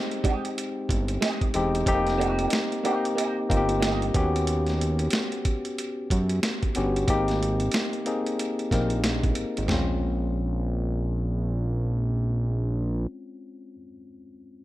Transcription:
Already playing: G#3 C4 D#4 G4
0.11 closed hi-hat
0.24 G#3 D#4 G4, kick, closed hi-hat
0.45 closed hi-hat
0.58 closed hi-hat
0.89 G1, kick, closed hi-hat
1.08 closed hi-hat
1.21 G#3 D#4 G4, snare, closed hi-hat
1.41 kick, closed hi-hat
1.54 E1 G#3 C4 D#4 G4, closed hi-hat
1.75 closed hi-hat
1.86 F1 A3 C4 D#4 G4, kick, closed hi-hat
1.93 A#3
2.07 snare, closed hi-hat
2.18 A3 D4 F#4, closed hi-hat
2.31 A#3 D#4 G4
2.39 closed hi-hat
2.50 muted clean electric guitar stroke, snare, closed hi-hat
2.72 closed hi-hat
2.84 A#3 C4 D#4 G4, closed hi-hat
3.05 closed hi-hat
3.15 A#3 D#4 G4, closed hi-hat
3.49 G1 A#3 C4 D#4 F4, kick, closed hi-hat
3.57 G4
3.69 closed hi-hat
3.80 A#3 D#4 G4, snare, closed hi-hat
4.02 closed hi-hat
4.14 D#2 B3 C#4 F#4 G4, kick, closed hi-hat
4.36 closed hi-hat
4.47 closed hi-hat
4.67 snare, closed hi-hat
4.81 closed hi-hat
4.99 closed hi-hat
5.10 snare, closed hi-hat
5.32 closed hi-hat
5.45 kick, closed hi-hat
5.65 closed hi-hat
5.78 closed hi-hat
6.10 F#2, kick, closed hi-hat
6.29 closed hi-hat
6.43 snare, closed hi-hat
6.63 kick, closed hi-hat
6.75 G1 B3 C#4 F#4 G4, closed hi-hat
6.96 closed hi-hat
7.08 G#1 A#3 C4 D#4 G4, kick, closed hi-hat
7.28 snare, closed hi-hat
7.43 closed hi-hat
7.60 closed hi-hat
7.72 snare, closed hi-hat
7.93 closed hi-hat
8.06 A#3 C4 D#4 G#4, closed hi-hat
8.26 closed hi-hat
8.39 closed hi-hat
8.59 closed hi-hat
8.71 A#1 A#3 C4 D#4 A#4, kick, snare, closed hi-hat
8.90 closed hi-hat
9.04 snare, closed hi-hat
9.24 kick, closed hi-hat
9.35 G#1, closed hi-hat
9.57 G#1, closed hi-hat
9.66 G#3 C4, snare, floor tom
9.71 A#1 C#4 F4

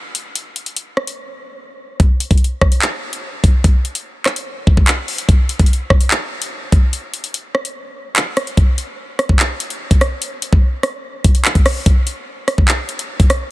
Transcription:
0.15 closed hi-hat
0.35 closed hi-hat
0.56 closed hi-hat
0.66 closed hi-hat
0.77 closed hi-hat
0.97 cross-stick
1.07 closed hi-hat
2.00 kick, closed hi-hat
2.20 closed hi-hat
2.31 kick, closed hi-hat
2.38 closed hi-hat
2.44 closed hi-hat
2.62 kick, cross-stick
2.72 closed hi-hat
2.82 clap
3.13 closed hi-hat
3.44 kick, closed hi-hat
3.64 kick, closed hi-hat
3.85 closed hi-hat
3.95 closed hi-hat
4.26 cross-stick, clap
4.36 closed hi-hat
4.67 kick
4.77 kick
4.88 clap, closed hi-hat
5.08 open hi-hat
5.18 closed hi-hat
5.29 kick, closed hi-hat
5.49 closed hi-hat
5.59 kick, closed hi-hat
5.66 closed hi-hat
5.73 closed hi-hat
5.90 kick, cross-stick
6.01 closed hi-hat
6.11 clap
6.42 closed hi-hat
6.72 kick, closed hi-hat
6.93 closed hi-hat
7.14 closed hi-hat
7.24 closed hi-hat
7.34 closed hi-hat
7.55 cross-stick
7.65 closed hi-hat
8.16 clap, closed hi-hat
8.37 cross-stick, closed hi-hat
8.47 closed hi-hat
8.57 kick, closed hi-hat
8.78 closed hi-hat
9.19 cross-stick, closed hi-hat
9.29 kick
9.40 clap
9.60 closed hi-hat
9.70 closed hi-hat
9.91 kick, closed hi-hat
10.01 cross-stick, closed hi-hat
10.22 closed hi-hat
10.42 closed hi-hat
10.53 kick
10.83 cross-stick, closed hi-hat
11.24 kick, closed hi-hat
11.35 closed hi-hat
11.45 clap
11.55 kick, closed hi-hat
11.66 cross-stick, open hi-hat
11.86 kick, closed hi-hat
12.07 closed hi-hat
12.48 cross-stick, closed hi-hat
12.58 kick
12.68 clap
12.89 closed hi-hat
12.99 closed hi-hat
13.20 kick, closed hi-hat
13.30 cross-stick, closed hi-hat

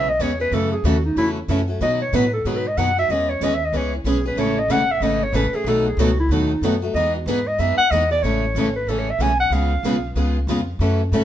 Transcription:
Already playing: B1 E5
0.09 D#5
0.19 E2 C#3 E3 G#3 B3 C#4 E4 G#4 C#5
0.40 B3 C#4 G#4 B4
0.52 F#2 C#3 E3 F#3 A3 C#4 E4 F#4 A4
0.72 G#4
0.84 D#2 C#3 E3 F#3 A3 C#4 E4 F#4 A4
1.05 D#4
1.16 E2 C#3 E3 F#3 A3 C#4 E4 F#4 A4
1.48 F#2 C#3 E3 F#3 A3 C#4 E4 F#4 A4
1.68 A3 C#4 F#4
1.81 B2 D#3 F#3 B3 D#4 F#4 B4 D#5
2.02 C#5
2.13 A2 B2 D#3 F#3 B3 D#4 F#4 B4
2.33 A4
2.45 G#2 B2 D#3 F#3 B3 D#4 F#4 G#4 B4
2.57 B4
2.67 D#5
2.77 F#2 B2 D#3 F#3 B3 D#4 F#4 B4 F#5
2.98 B3 D#4 F#4 E5
3.09 E2 E3 G#3 B3 C#4 G#4 B4 D#5
3.30 C#5
3.41 D#2 E3 G#3 B3 C#4 G#4 B4 D#5
3.54 E5
3.65 D#5
3.73 C#2 E3 G#3 B3 C#4 G#4 B4 C#5
3.95 E4
4.04 B1 E3 G#3 B3 C#4 G#4 B4
4.26 B3 C#4 G#4 B4
4.36 A1 C#3 E3 G#3 A3 C#4 E4 G#4 A4 C#5
4.59 D#5
4.68 E1 C#3 E3 G#3 A3 C#4 E4 G#4 A4 F#5
4.91 E5
5.00 G#1 C#3 E3 G#3 A3 C#4 E4 G#4 A4 D#5
5.23 C#5
5.32 A1 C#3 E3 G#3 A3 C#4 E4 G#4 A4 B4
5.53 A3 C#4 G#4
5.64 B1 B2 D#3 F#3 A3 B3 D#4 F#4 A4
5.88 G#4
5.97 C#2 B2 D#3 F#3 A3 B3 D#4 F#4 A4
6.20 E4
6.29 D#2 B2 D#3 F#3 A3 B3 D#4 F#4 A4
6.61 F#2 B2 D#3 F#3 A3 B3 D#4 F#4 A4
6.82 A3 D#4 F#4
6.94 E2 E3 G#3 B3 D#4 G#4 D#5
7.15 F#4
7.26 G#2 E3 G#3 B3 D#4 G#4 B4
7.47 D#5
7.58 F#2 E3 G#3 B3 D#4 G#4 E5
7.77 F#5, muted upright bass stroke
7.91 E2 E3 G#3 B3 D#4 G#4 D#5
8.11 B3 D#4 G#4 D5
8.23 A1 C#3 E3 G#3 A3 C#4 E4 G#4 A4 C#5
8.55 G#1 C#3 E3 G#3 A3 C#4 E4 G#4 A4
8.76 B4
8.87 A1 C#3 E3 G#3 A3 C#4 E4 G#4 A4
8.99 C#5
9.10 E5
9.19 B1 C#3 E3 G#3 A3 C#4 E4 G#4 A4 G#5
9.40 F#5
9.50 C#2 C#3 G#3 B3 F4 G#4 F5
9.83 B1 C#3 G#3 B3 F4 G#4
10.15 C#2 C#3 G#3 B3 F4 G#4
10.47 F2 C#3 G#3 B3 F4 G#4
10.79 F#2 C#3 E3 F#3 A3 C#4 E4 F#4 A4
11.12 G#2 C#3 E3 F#3 A3 C#4 E4 F#4 A4

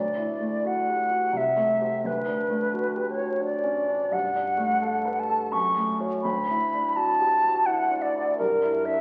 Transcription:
Already playing: D2 D5
0.17 E4
0.40 A3
0.65 F#4 F#5
0.89 G4
1.11 F#4
1.33 C2
1.37 E5
1.56 A3
1.80 G4 C5
2.04 D2 B4
2.27 D4
2.49 A3
2.73 F#4
2.96 G4
3.11 C#5
3.19 F#4
3.41 D4
3.45 D5
3.63 C#4
3.87 D4
4.11 G2 F#5
4.35 D4
4.58 A3
4.82 A4
5.05 B4
5.20 A5
5.30 A4
5.52 F#2 C#6
5.77 A3
6.00 F#4 C#5
6.22 D2 B5
6.49 E4
6.74 D4
6.96 F#4 A5
7.20 G4
7.43 F#4
7.66 E4 F#5
7.90 D4
8.02 D5
8.14 E4
8.38 G2 A#4
8.62 E4
8.86 D4 E5

